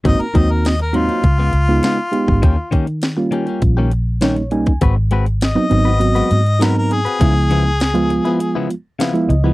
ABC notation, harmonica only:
X:1
M:4/4
L:1/16
Q:1/4=101
K:Ebmix
V:1 name="Harmonica"
e B e B e B F8- F2- | F2 z12 z2 | [K:Db] z4 e8 B B A2- | A8- A2 z6 |]